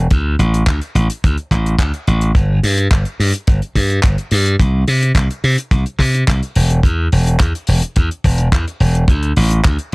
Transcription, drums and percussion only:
0.11 kick, closed hi-hat
0.39 closed hi-hat
0.54 closed hi-hat
0.67 kick, clap, closed hi-hat
0.82 closed hi-hat
0.95 closed hi-hat
1.10 closed hi-hat
1.24 kick, closed hi-hat
1.38 closed hi-hat
1.51 kick, clap, closed hi-hat
1.66 closed hi-hat
1.79 kick, clap, closed hi-hat
1.94 closed hi-hat
2.07 closed hi-hat
2.21 closed hi-hat
2.35 kick, closed hi-hat
2.64 open hi-hat
2.77 closed hi-hat
2.91 kick, clap, closed hi-hat
3.05 closed hi-hat
3.20 open hi-hat
3.34 closed hi-hat
3.47 kick, closed hi-hat
3.62 closed hi-hat
3.76 kick, open hi-hat
3.90 closed hi-hat
4.03 kick, clap, closed hi-hat
4.18 closed hi-hat
4.31 open hi-hat
4.46 closed hi-hat
4.60 kick, closed hi-hat
4.88 open hi-hat
5.03 closed hi-hat
5.15 kick, clap, closed hi-hat
5.31 closed hi-hat
5.44 open hi-hat
5.58 closed hi-hat
5.71 kick, closed hi-hat
5.86 closed hi-hat
5.99 kick, clap, open hi-hat
6.14 closed hi-hat
6.28 kick, clap, closed hi-hat
6.43 closed hi-hat
6.56 open hi-hat
6.70 closed hi-hat
6.83 kick, closed hi-hat
7.12 open hi-hat
7.27 closed hi-hat
7.40 kick, clap, closed hi-hat
7.55 closed hi-hat
7.67 open hi-hat
7.82 closed hi-hat
7.96 kick, closed hi-hat
8.11 closed hi-hat
8.24 kick, open hi-hat
8.38 closed hi-hat
8.52 kick, clap, closed hi-hat
8.68 closed hi-hat
8.81 open hi-hat
8.95 closed hi-hat
9.08 kick, closed hi-hat
9.23 closed hi-hat
9.36 open hi-hat
9.50 closed hi-hat
9.64 kick, clap, closed hi-hat
9.79 closed hi-hat

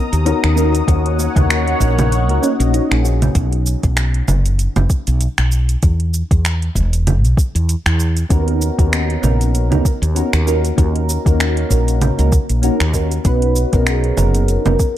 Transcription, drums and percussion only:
0.13 closed hi-hat, shaker
0.26 closed hi-hat, shaker
0.44 finger snap, closed hi-hat
0.57 shaker
0.75 closed hi-hat, shaker
0.88 kick, closed hi-hat, shaker
1.06 closed hi-hat
1.19 shaker
1.36 kick, closed hi-hat, low conga, shaker
1.50 finger snap, closed hi-hat, shaker
1.68 closed hi-hat
1.80 kick, shaker
1.99 closed hi-hat, low conga, shaker
2.12 closed hi-hat, shaker
2.29 closed hi-hat
2.43 shaker
2.60 closed hi-hat, shaker
2.74 closed hi-hat, shaker
2.92 finger snap, closed hi-hat
3.05 shaker
3.22 closed hi-hat, low conga, shaker
3.35 kick, closed hi-hat, shaker
3.53 closed hi-hat
3.66 shaker
3.83 kick, closed hi-hat, shaker
3.97 finger snap, closed hi-hat, shaker
4.14 closed hi-hat
4.28 low conga, shaker
4.46 closed hi-hat, shaker
4.59 closed hi-hat, shaker
4.76 closed hi-hat, low conga, shaker
4.90 kick, shaker
5.07 closed hi-hat, shaker
5.21 closed hi-hat, shaker
5.38 finger snap, closed hi-hat, shaker
5.52 shaker
5.69 closed hi-hat, shaker
5.83 kick, closed hi-hat, shaker
6.00 closed hi-hat
6.14 shaker
6.31 kick, closed hi-hat, shaker
6.45 finger snap, closed hi-hat, shaker
6.62 closed hi-hat
6.75 kick, shaker
6.93 closed hi-hat, shaker
7.07 closed hi-hat, low conga, shaker
7.25 closed hi-hat, shaker
7.37 kick, shaker
7.56 closed hi-hat, shaker
7.69 closed hi-hat, shaker
7.86 finger snap, closed hi-hat, shaker
8.00 shaker
8.17 closed hi-hat, shaker
8.30 kick, closed hi-hat, shaker
8.48 closed hi-hat
8.62 shaker
8.79 kick, closed hi-hat, shaker
8.93 finger snap, closed hi-hat, shaker
9.10 closed hi-hat
9.23 low conga, shaker
9.41 closed hi-hat, shaker
9.55 closed hi-hat, shaker
9.72 closed hi-hat, low conga, shaker
9.85 kick, shaker
10.03 closed hi-hat, shaker
10.16 closed hi-hat, shaker
10.33 finger snap, closed hi-hat, shaker
10.47 shaker
10.65 closed hi-hat, shaker
10.78 kick, closed hi-hat, shaker
10.96 closed hi-hat
11.09 shaker
11.26 kick, closed hi-hat, shaker
11.40 finger snap, closed hi-hat, shaker
11.57 closed hi-hat
11.71 kick, shaker
11.88 closed hi-hat, shaker
12.01 closed hi-hat, low conga, shaker
12.19 closed hi-hat, shaker
12.32 kick, shaker
12.49 closed hi-hat, shaker
12.63 closed hi-hat, shaker
12.80 finger snap, closed hi-hat, shaker
12.94 kick, shaker
13.12 closed hi-hat, shaker
13.25 kick, closed hi-hat, shaker
13.42 closed hi-hat
13.56 shaker
13.73 kick, closed hi-hat, shaker
13.87 finger snap, closed hi-hat, shaker
14.04 closed hi-hat
14.17 low conga, shaker
14.35 closed hi-hat, shaker
14.48 closed hi-hat, shaker
14.66 closed hi-hat, low conga, shaker
14.79 kick, shaker

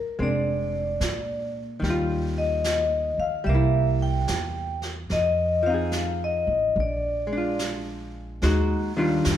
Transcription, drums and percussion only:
0.19 brush sweep
1.01 snare, hi-hat pedal
1.83 brush sweep, snare
2.64 snare, hi-hat pedal
3.46 brush sweep
4.28 snare, hi-hat pedal
4.82 snare
5.09 brush sweep, snare
5.92 snare, hi-hat pedal
6.75 brush sweep
7.59 snare, hi-hat pedal
8.42 brush sweep, snare
9.25 snare, hi-hat pedal

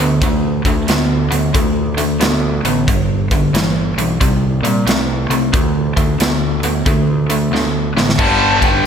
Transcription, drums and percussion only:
0.22 kick, closed hi-hat
0.65 kick, closed hi-hat
0.88 snare, closed hi-hat
1.32 closed hi-hat
1.55 kick, closed hi-hat
1.98 closed hi-hat
2.21 snare, closed hi-hat
2.65 closed hi-hat
2.88 kick, closed hi-hat
3.31 kick, closed hi-hat
3.55 snare, closed hi-hat
3.98 closed hi-hat
4.21 kick, closed hi-hat
4.65 closed hi-hat
4.88 snare, closed hi-hat
5.31 closed hi-hat
5.54 kick, closed hi-hat
5.97 kick, closed hi-hat
6.20 snare, closed hi-hat
6.63 closed hi-hat
6.86 kick, closed hi-hat
7.30 closed hi-hat
7.55 snare
7.97 snare
8.09 snare
8.19 kick, crash
8.62 kick, ride

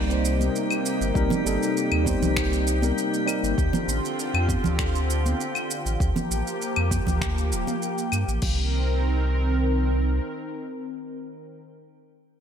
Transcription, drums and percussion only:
0.10 shaker
0.25 shaker
0.41 high conga, shaker
0.56 shaker
0.71 claves, shaker
0.86 shaker
1.02 shaker
1.15 kick, shaker
1.30 high conga, low conga, shaker
1.47 shaker
1.63 shaker
1.77 shaker
1.92 claves
2.06 kick, high conga, shaker
2.23 low conga, shaker
2.37 finger snap, kick, shaker
2.53 shaker
2.67 shaker
2.82 high conga, shaker
2.98 shaker
3.14 shaker
3.28 claves, shaker
3.44 shaker
3.58 kick, shaker
3.73 high conga, low conga, shaker
3.89 shaker
4.05 shaker
4.19 shaker
4.35 claves
4.49 kick, high conga, shaker
4.64 low conga, shaker
4.79 finger snap, kick, shaker
4.96 shaker
5.10 shaker
5.26 high conga, shaker
5.41 shaker
5.55 claves, shaker
5.71 shaker
5.86 shaker
6.00 kick, shaker
6.16 high conga, low conga, shaker
6.31 shaker
6.48 shaker
6.62 shaker
6.76 claves
6.91 kick, high conga, shaker
7.07 kick, low conga, shaker
7.21 finger snap, kick, shaker
7.38 shaker
7.52 shaker
7.67 high conga, shaker
7.82 shaker
7.98 shaker
8.12 claves, shaker
8.29 shaker
8.42 kick, crash

